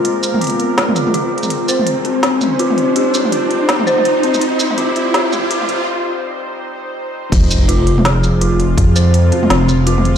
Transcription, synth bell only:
X:1
M:4/4
L:1/8
Q:"Swing 16ths" 1/4=165
K:Fm
V:1 name="Synth bell"
z2 F z A F F z | z c2 C3 F z | G2 F z2 c2 C- | C2 F z G2 F z |
z8 | z2 F z A2 F z | z c2 C3 F z |]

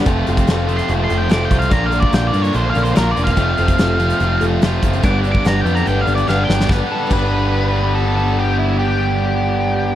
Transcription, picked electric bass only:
X:1
M:4/4
L:1/8
Q:1/4=144
K:Gmix
V:1 name="Picked electric bass" clef=bass
F,,, F,,, F,,,2 F,,, F,,, F,,, C,, | _B,,,2 B,,, G,, B,,, B,,, B,,, E,,, | F,,, F,,, F,,,2 F,,, F,,, F,,, ^F,,, | G,,,2 G,,, F,, G,,, G,,, G,,, G,,, |
G,,, z G,,,6- | G,,,8 |]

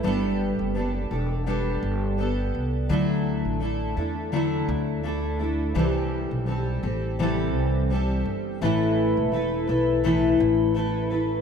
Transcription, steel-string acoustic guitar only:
X:1
M:4/4
L:1/8
Q:"Swing 16ths" 1/4=84
K:G
V:1 name="Steel-string acoustic guitar"
[G,B,DGA]2 [B,DGA] [DGA] [G,B,DGA]2 [B,DGA]2 | [D,F,A,DEA]2 [A,DEA] [A,DEA] [D,F,A,DEA]2 [A,DEA] [A,DEA] | [C,E,G,CGA]2 [G,CGA] [G,CGA] [C,E,G,CGA]2 [G,CGA]2 | [A,,E,A,EAB]2 [A,EAB] [A,EAB] [A,,E,A,EAB]2 [A,EAB] [A,EAB] |]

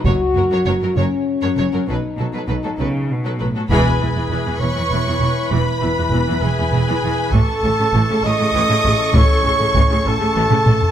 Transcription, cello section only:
X:1
M:6/8
L:1/16
Q:3/8=66
K:Cblyd
V:1 name="Cello section" clef=bass
G,, z G,, G,, G,, G,, G,, z2 G,, G,, G,, | C, z C, C, C, C, D,2 C,2 =A,,2 | [K:E] E,, z E,, E,, E,, E,, E,, E,, E,, E,, E,, z | E,, z E,, E,, E,, E,, E,, E,, E,, E,, E,, z |
A,, z A,, A,, A,, A,, A,, A,, A,, A,, A,, z | A,, z A,, A,, A,, A,, A,, A,, A,, A,, A,, z |]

